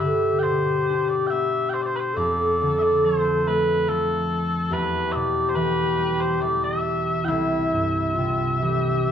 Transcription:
Already playing: G2 E4 G4
0.00 D3 E5
0.39 C5 G5
0.44 B2
0.89 D4
1.09 D5
1.27 E5 G5
1.32 B3
1.69 G5
1.74 C5
1.82 D5
1.86 C5
1.96 B4 C5
2.14 F2 A4 D5
2.62 D3
2.79 D5 E5
3.04 F3 C5
3.47 A3 B4
3.88 F3 A4
4.69 E2 G4
4.73 B4
5.12 B2 D5 E5
5.49 C5
5.55 E3 B4
5.98 G3
6.21 C5
6.41 E3 D5
6.64 E5
7.24 C2 E4 E5 G5
7.72 G2
8.14 F4
8.18 C3
8.61 E3 G4

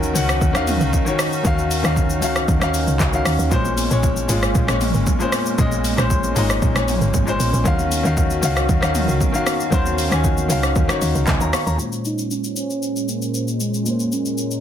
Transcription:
Already playing: D#2 D#3 C#4 D#4 F#4 A#4 F5
0.03 shaker
0.14 C#2 D#3 C#4 F#4 F#5, open hi-hat, shaker
0.29 cross-stick, shaker
0.41 D#2, kick, shaker
0.53 D#2 D#3 C#4 F#4 F5, cross-stick, shaker
0.67 mid tom, open hi-hat, shaker
0.81 C#2, shaker
0.93 kick, shaker
1.05 D#3 C#4 F#4 C#5, shaker
1.19 cross-stick, open hi-hat, shaker
1.33 shaker
1.43 D#2 D#3 C#4 F#4 F5, kick, shaker
1.58 shaker
1.71 open hi-hat, shaker
1.83 D#2 D#3 C#4 F#4 F5, cross-stick, shaker
1.97 kick, shaker
2.10 shaker
2.21 C#2 D#3 C#4 F#4 F5, open hi-hat, shaker
2.36 cross-stick, shaker
2.48 D#2, kick, shaker
2.60 D#2 D#3 C#4 F#4 F5, cross-stick, shaker
2.74 open hi-hat, shaker
2.87 C#2, shaker
3.00 C#2, kick, clap, shaker
3.12 D#3 C#4 F#4 F5, shaker
3.25 D#2, cross-stick, open hi-hat, shaker
3.39 D#2, shaker
3.50 A#1 A#2 G#3 A#3 C#4 C5, kick, low conga, shaker
3.65 high conga, shaker
3.78 open hi-hat, high conga, shaker
3.89 A#1 A#2 G#3 C#4 C#5, shaker
4.03 kick, shaker
4.17 high conga, shaker
4.28 G#1 A#2 G#3 C#4 F4, open hi-hat, shaker
4.43 cross-stick, shaker
4.55 A#1, kick, low conga, shaker
4.67 A#1 A#2 G#3 C#4 C#5, cross-stick, shaker
4.81 mid tom, open hi-hat, shaker
4.94 G#1, shaker
5.06 kick, high conga, low conga, shaker
5.19 A#2 G#3 C#4 C5, shaker
5.32 cross-stick, open hi-hat, high conga, shaker
5.46 shaker
5.57 A#1 A#2 G#3 C#4 D#5, kick, low conga, shaker
5.72 high conga, shaker
5.84 open hi-hat, high conga, shaker
5.96 A#1 A#2 G#3 C#4 C5, cross-stick, shaker
6.10 kick, shaker
6.24 high conga, shaker
6.34 G#1 A#2 G#3 C#4 D#4, open hi-hat, shaker
6.50 cross-stick, shaker
6.62 A#1, kick, low conga, shaker
6.74 A#1 A#2 G#3 C#4 C#5, cross-stick, shaker
6.88 mid tom, open hi-hat, shaker
7.01 G#1, shaker
7.14 G#1, kick, high conga, low conga, shaker
7.25 A#2 G#3 C#4 C5, shaker
7.40 A#1, open hi-hat, high conga, shaker
7.53 A#1, shaker
7.64 D#2 D#3 C#4 F#4 F5, kick, low conga, shaker
7.79 high conga, shaker
7.91 open hi-hat, high conga, shaker
8.03 D#2 D#3 C#4 F#4 F5, shaker
8.17 kick, shaker
8.30 high conga, shaker
8.41 C#2 D#3 C#4 F#4 F5, open hi-hat, shaker
8.57 cross-stick, shaker
8.69 D#2, kick, low conga, shaker
8.81 D#2 D#3 C#4 F#4 F5, cross-stick, shaker
8.95 mid tom, open hi-hat, shaker
9.08 C#2, shaker
9.21 kick, high conga, low conga, shaker
9.32 D#3 C#4 F#4 F5, shaker
9.46 cross-stick, open hi-hat, high conga, shaker
9.60 shaker
9.70 D#2 D#3 C#4 F#4 C5, kick, low conga, shaker
9.85 high conga, shaker
9.98 open hi-hat, high conga, shaker
10.10 D#2 D#3 C#4 F#4 G#5, cross-stick, shaker
10.24 kick, shaker
10.37 high conga, shaker
10.48 C#2 D#3 C#4 F#4 F5, open hi-hat, low conga, shaker
10.63 cross-stick, shaker
10.75 D#2, kick, low conga, shaker
10.88 D#3 C#4 F#4 C#5, cross-stick, shaker
11.01 D#2, open hi-hat, shaker
11.15 C#2, shaker
11.27 C#2 C5 G#5, kick, clap, high conga, low conga, shaker
11.41 D#2 C#5 A#5, shaker
11.53 F5 C#6, cross-stick, open hi-hat, high conga, shaker
11.67 D#2 C#5 A#5, shaker
11.76 A#2 G#3 C#4 C5, shaker
11.80 C#4 C5
11.92 shaker
12.05 D#4, shaker
12.18 shaker
12.31 C#4, shaker
12.44 shaker
12.56 C#4, shaker
12.70 shaker
12.82 shaker
12.96 shaker
13.08 A#3, shaker
13.22 shaker
13.34 shaker
13.48 shaker
13.60 G#3, shaker
13.74 shaker
13.83 A#2 G#3 A#3 A#4, shaker
13.87 C#4 C5
13.99 shaker
14.12 C#4, shaker
14.26 shaker
14.38 shaker
14.51 shaker

